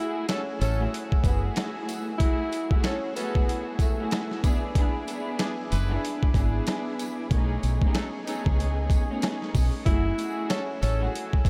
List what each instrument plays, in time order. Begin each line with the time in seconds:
Already playing: string section A3, tonewheel organ A3 F#5 G#5 E6, tenor saxophone E4
0.00 string section E4 F#4 G#4
0.28 trumpet section C#4 A4, tenor saxophone C#4, snare, closed hi-hat
0.60 fingered electric bass A1, trumpet section C#4 A4, tenor saxophone C#4, closed hi-hat, tambourine
0.78 string section A3 E4 F#4 G#4
0.94 closed hi-hat
1.12 kick
1.24 fingered electric bass F#1, string section A3 E4 F#4 G#4, tenor saxophone B3, kick, closed hi-hat, tambourine
1.56 snare, closed hi-hat
1.89 closed hi-hat, tambourine
2.18 string section A3 E4 F#4 G#4, tenor saxophone E4, tonewheel organ G#5, kick, closed hi-hat
2.52 closed hi-hat, tambourine
2.71 string section A3 E4 F#4 G#4, kick
2.84 trumpet section C#4 A4, tenor saxophone C#4, snare, closed hi-hat
3.14 string section A3 E4 F#4 G#4, tenor saxophone B3, trumpet section C#4 A4, closed hi-hat, tambourine
3.35 kick
3.49 closed hi-hat
3.79 tenor saxophone A3, kick, closed hi-hat, tambourine
3.97 string section A3 E4 F#4 G#4
4.11 snare, closed hi-hat
4.31 snare
4.42 string section B3 D4 E4 G#4, tonewheel organ B4 E5 G#5 D6, kick, closed hi-hat, tambourine
4.74 string section B3 D4 E4 G#4, kick, closed hi-hat
5.06 string section B3 D4 E4 G#4, closed hi-hat, tambourine
5.39 trumpet section D4 G#4, snare, closed hi-hat
5.70 fingered electric bass F#1, trumpet section G#3 E4 B4, closed hi-hat, tambourine
5.88 string section B3 D4 E4 G#4
6.05 closed hi-hat
6.23 kick
6.34 fingered electric bass G#1, string section B3 D4 E4 G#4, kick, closed hi-hat, tambourine
6.67 snare, closed hi-hat
6.99 closed hi-hat, tambourine
7.31 fingered electric bass B1, string section A3 B3 C#4 D#4 G#4, tonewheel organ A3 D#5 C#6, kick, closed hi-hat
7.63 fingered electric bass B1, closed hi-hat, tambourine
7.82 string section A3 B3 C#4 D#4 G#4, kick
7.95 trumpet section F#3 D#4 A4, snare, closed hi-hat
8.24 trumpet section F#3 D#4 A4, string section A3 B3 C#4 D#4 G#4, closed hi-hat, tambourine
8.46 fingered electric bass C#2, kick
8.60 closed hi-hat
8.90 kick, closed hi-hat, tambourine
9.08 string section A3 B3 C#4 D#4 G#4
9.22 snare, closed hi-hat
9.42 snare
9.55 fingered electric bass B1, kick, open hi-hat, tambourine
9.84 fingered electric bass F#1, string section A3 E4 F#4 G#4, tenor saxophone E4, kick, closed hi-hat
9.88 tonewheel organ A3 F#5 G#5 E6
10.18 string section A3 E4 F#4 G#4, closed hi-hat, tambourine
10.49 trumpet section C#4 A4, tenor saxophone C#4, snare, closed hi-hat
10.81 fingered electric bass A1, trumpet section C#4 A4, tenor saxophone C#4, closed hi-hat, tambourine
10.99 string section A3 E4 F#4 G#4
11.15 closed hi-hat
11.33 kick
11.45 fingered electric bass F#1, string section A3 E4, kick, closed hi-hat, tambourine